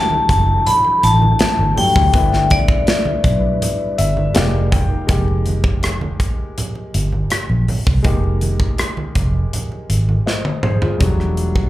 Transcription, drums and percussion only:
0.10 muted conga, high conga
0.29 kick, closed hi-hat
0.67 closed hi-hat, muted conga, low conga
0.84 muted conga
1.03 closed hi-hat
1.22 high conga
1.39 snare, closed hi-hat, muted conga
1.77 open hi-hat, high conga, low conga
1.96 kick
2.14 kick, closed hi-hat, muted conga
2.32 snare, muted conga
2.50 kick, closed hi-hat, high conga
2.68 kick
2.87 snare, closed hi-hat, muted conga
3.05 muted conga, high conga
3.24 kick, closed hi-hat
3.62 closed hi-hat, muted conga, low conga
3.98 closed hi-hat
4.17 high conga
4.35 snare, closed hi-hat, muted conga
4.54 muted conga
4.72 kick, closed hi-hat, high conga, low conga
5.09 kick, closed hi-hat, muted conga
5.28 muted conga
5.46 closed hi-hat, high conga
5.64 kick
5.83 cross-stick, closed hi-hat, muted conga
6.01 muted conga, high conga
6.20 kick, closed hi-hat
6.58 closed hi-hat, muted conga, low conga
6.75 muted conga
6.94 closed hi-hat
7.12 high conga
7.30 cross-stick, closed hi-hat
7.49 muted conga
7.68 open hi-hat, high conga, low conga
7.87 kick
8.04 kick, closed hi-hat, muted conga
8.24 muted conga
8.41 closed hi-hat, high conga
8.60 kick
8.78 cross-stick, closed hi-hat
8.97 muted conga, high conga
9.15 kick, closed hi-hat
9.53 closed hi-hat, muted conga, low conga
9.72 muted conga
9.90 closed hi-hat
10.09 high conga
10.27 snare
10.45 high tom
10.63 mid tom, high conga, low conga
10.82 floor tom
11.00 kick, closed hi-hat
11.20 cross-stick
11.37 closed hi-hat
11.56 kick

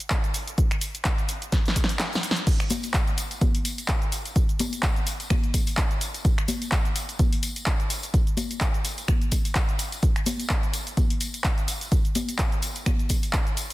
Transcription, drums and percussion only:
0.00 closed hi-hat, shaker
0.10 kick, clap, closed hi-hat, shaker
0.24 closed hi-hat, shaker
0.34 open hi-hat, shaker
0.48 closed hi-hat, shaker
0.58 kick, closed hi-hat, shaker
0.71 finger snap, closed hi-hat, shaker
0.81 open hi-hat, shaker
0.95 closed hi-hat, shaker
1.05 kick, clap, closed hi-hat, shaker
1.18 closed hi-hat, shaker
1.29 open hi-hat, shaker
1.42 closed hi-hat, shaker
1.52 kick, snare, closed hi-hat, shaker
1.66 snare, closed hi-hat, shaker
1.76 kick, open hi-hat, shaker
1.84 snare
1.89 open hi-hat, shaker
1.99 snare, clap, closed hi-hat, shaker
2.13 snare, closed hi-hat, shaker
2.23 open hi-hat, shaker
2.31 snare
2.36 closed hi-hat, shaker
2.47 kick, closed hi-hat, tambourine, crash, shaker
2.60 finger snap, closed hi-hat, shaker
2.70 open hi-hat, tambourine, high conga, shaker
2.83 closed hi-hat, tambourine, shaker
2.94 kick, clap, closed hi-hat, shaker
3.07 closed hi-hat, shaker
3.18 open hi-hat, tambourine, shaker
3.31 closed hi-hat, tambourine, shaker
3.41 kick, closed hi-hat, tambourine, high conga, shaker
3.55 open hi-hat, shaker
3.65 open hi-hat, tambourine, shaker
3.78 closed hi-hat, tambourine, shaker
3.88 kick, clap, closed hi-hat, shaker
4.02 closed hi-hat, shaker
4.12 open hi-hat, tambourine, shaker
4.25 closed hi-hat, tambourine, shaker
4.36 kick, closed hi-hat, tambourine, shaker
4.49 closed hi-hat, shaker
4.59 open hi-hat, tambourine, high conga, shaker
4.73 closed hi-hat, tambourine, shaker
4.83 kick, clap, closed hi-hat, tambourine, shaker
4.96 closed hi-hat, shaker
5.07 open hi-hat, tambourine, shaker
5.20 closed hi-hat, tambourine, shaker
5.30 finger snap, kick, closed hi-hat, tambourine, high conga, shaker
5.44 closed hi-hat, shaker
5.54 kick, open hi-hat, tambourine, shaker
5.67 open hi-hat, tambourine, shaker
5.77 kick, clap, closed hi-hat, tambourine, shaker
5.91 closed hi-hat, shaker
6.01 open hi-hat, tambourine, shaker
6.14 closed hi-hat, tambourine, shaker
6.25 kick, closed hi-hat, tambourine, shaker
6.38 finger snap, closed hi-hat, shaker
6.48 open hi-hat, tambourine, high conga, shaker
6.62 closed hi-hat, tambourine, shaker
6.72 kick, clap, closed hi-hat, shaker
6.85 closed hi-hat, shaker
6.96 open hi-hat, tambourine, shaker
7.09 closed hi-hat, tambourine, shaker
7.19 kick, closed hi-hat, tambourine, high conga, shaker
7.33 open hi-hat, shaker
7.43 open hi-hat, tambourine, shaker
7.56 closed hi-hat, tambourine, shaker
7.66 kick, clap, closed hi-hat, shaker
7.80 closed hi-hat, shaker
7.90 open hi-hat, tambourine, shaker
8.03 closed hi-hat, tambourine, shaker
8.14 kick, closed hi-hat, tambourine, shaker
8.27 closed hi-hat, shaker
8.37 open hi-hat, tambourine, high conga, shaker
8.51 closed hi-hat, tambourine, shaker
8.61 kick, clap, closed hi-hat, shaker
8.74 closed hi-hat, shaker
8.85 open hi-hat, tambourine, shaker
8.98 closed hi-hat, tambourine, shaker
9.08 finger snap, kick, closed hi-hat, tambourine, high conga, shaker
9.21 closed hi-hat, shaker
9.31 kick, open hi-hat, tambourine, shaker
9.45 open hi-hat, tambourine, shaker
9.55 kick, clap, closed hi-hat, shaker
9.69 closed hi-hat, shaker
9.79 open hi-hat, tambourine, shaker
9.92 closed hi-hat, tambourine, shaker
10.02 kick, closed hi-hat, tambourine, shaker
10.16 finger snap, closed hi-hat, shaker
10.26 open hi-hat, tambourine, high conga, shaker
10.39 closed hi-hat, tambourine, shaker
10.50 kick, clap, closed hi-hat, shaker
10.63 closed hi-hat, shaker
10.73 open hi-hat, tambourine, shaker
10.87 closed hi-hat, tambourine, shaker
10.97 kick, closed hi-hat, tambourine, high conga, shaker
11.10 open hi-hat, shaker
11.20 open hi-hat, tambourine, shaker
11.34 closed hi-hat, tambourine, shaker
11.44 kick, clap, closed hi-hat, shaker
11.58 closed hi-hat, shaker
11.68 open hi-hat, tambourine, shaker
11.81 closed hi-hat, tambourine, shaker
11.92 kick, closed hi-hat, tambourine, shaker
12.05 closed hi-hat, shaker
12.15 open hi-hat, tambourine, high conga, shaker
12.28 closed hi-hat, tambourine, shaker
12.39 kick, clap, closed hi-hat, shaker
12.52 closed hi-hat, shaker
12.62 open hi-hat, tambourine, shaker
12.75 closed hi-hat, tambourine, shaker
12.86 finger snap, kick, closed hi-hat, tambourine, high conga, shaker
12.99 closed hi-hat, shaker
13.09 kick, open hi-hat, tambourine, shaker
13.23 open hi-hat, tambourine, shaker
13.33 kick, clap, closed hi-hat, tambourine, shaker
13.47 closed hi-hat, shaker
13.57 open hi-hat, tambourine, shaker
13.70 closed hi-hat

